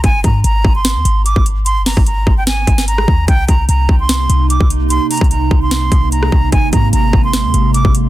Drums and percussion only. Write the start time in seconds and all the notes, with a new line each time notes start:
0.04 kick, closed hi-hat
0.24 kick, closed hi-hat
0.44 closed hi-hat
0.65 kick
0.85 snare, closed hi-hat
1.05 closed hi-hat
1.26 closed hi-hat
1.36 kick
1.46 closed hi-hat
1.66 closed hi-hat
1.86 snare, open hi-hat
1.97 kick
2.06 closed hi-hat
2.27 kick
2.47 snare, closed hi-hat
2.67 kick, closed hi-hat
2.78 snare
2.88 closed hi-hat
2.98 cross-stick
3.08 kick
3.28 kick, closed hi-hat
3.48 kick, closed hi-hat
3.69 closed hi-hat
3.89 kick
4.09 snare, closed hi-hat
4.30 closed hi-hat
4.50 closed hi-hat
4.60 kick
4.70 closed hi-hat
4.90 closed hi-hat
5.11 closed hi-hat, open hi-hat
5.17 kick, closed hi-hat
5.24 closed hi-hat
5.31 closed hi-hat
5.51 kick
5.71 snare, closed hi-hat
5.92 kick, closed hi-hat
6.12 closed hi-hat
6.23 cross-stick
6.32 kick
6.52 kick, closed hi-hat
6.73 kick, closed hi-hat
6.93 closed hi-hat
7.13 kick
7.33 snare, closed hi-hat
7.54 closed hi-hat
7.74 closed hi-hat
7.85 kick
7.95 closed hi-hat